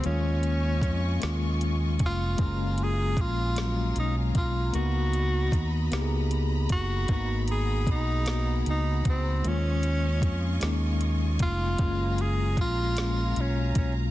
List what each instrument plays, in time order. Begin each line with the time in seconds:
0.02 fingered electric bass D#2, tine electric piano G3 A#3 C#4 F4, tenor saxophone C#4, string section F4 D#5 G#5 C#6, closed hi-hat
0.09 tine electric piano G#3
0.43 closed hi-hat
0.81 fingered electric bass F2, kick, closed hi-hat
1.20 fingered electric bass D#2, tine electric piano G#3 A#3 C#4 F4, snare, closed hi-hat
1.61 closed hi-hat
1.99 fingered electric bass F1, kick, closed hi-hat
2.06 tenor saxophone F4
2.37 fingered electric bass F#1, tine electric piano G#3 A#3 C#4, string section A#5, kick, closed hi-hat
2.41 string section F#3 F5 G#5, tine electric piano F4
2.78 closed hi-hat
2.83 tenor saxophone G#4
3.17 fingered electric bass A#1, kick, closed hi-hat
3.21 tenor saxophone F4
3.55 tine electric piano F#3 G#3 A#3 C#4, snare, closed hi-hat
3.96 fingered electric bass B1, tenor saxophone D#4, closed hi-hat
4.35 fingered electric bass B1, tenor saxophone F4, kick, closed hi-hat
4.73 fingered electric bass C#2, tine electric piano A#3 B3 D#4 F#4, tenor saxophone F#4, string section D#5 B5, closed hi-hat
5.13 closed hi-hat
5.52 fingered electric bass D#2, kick, closed hi-hat
5.91 fingered electric bass C#2, tine electric piano A#3 B3 D#4 G4, snare, closed hi-hat
6.01 tine electric piano G#4
6.31 closed hi-hat
6.69 fingered electric bass F#1, tenor saxophone F#4, kick, closed hi-hat
7.07 fingered electric bass G#1, tine electric piano A#3 B3, string section G#4 F#5, kick, closed hi-hat
7.11 tine electric piano D#4 F#4
7.48 closed hi-hat
7.52 tenor saxophone G#4
7.87 fingered electric bass B1, kick, closed hi-hat
7.91 tenor saxophone D#4
8.26 tine electric piano A#3 B3 D#4, snare, closed hi-hat
8.30 tine electric piano F#4
8.66 fingered electric bass C#2, tenor saxophone D#4, closed hi-hat
9.05 fingered electric bass C#2, kick, closed hi-hat
9.09 tenor saxophone C4
9.43 fingered electric bass D#2, tine electric piano G#3 A#3 C#4 F4, string section F4 D#5 G#5 C#6, closed hi-hat
9.48 tenor saxophone C#4
9.83 closed hi-hat
10.22 fingered electric bass F2, kick, closed hi-hat
10.60 fingered electric bass D#2, tine electric piano G#3 A#3 C#4, snare, closed hi-hat
10.65 tine electric piano D#4
11.01 closed hi-hat
11.39 fingered electric bass F1, tenor saxophone F4, kick, closed hi-hat
11.78 fingered electric bass F#1, string section F#3 F5 A#5, tine electric piano G#3 A#3 C#4, kick, closed hi-hat
11.83 tine electric piano F4
12.18 tenor saxophone G#4, closed hi-hat
12.57 fingered electric bass A#1, tenor saxophone F4, kick, closed hi-hat
12.96 tine electric piano G#3 A#3 C#4, snare, closed hi-hat
13.01 tine electric piano F4
13.36 fingered electric bass B1, closed hi-hat
13.41 tenor saxophone C#4
13.75 fingered electric bass B1, tenor saxophone C#4, kick, closed hi-hat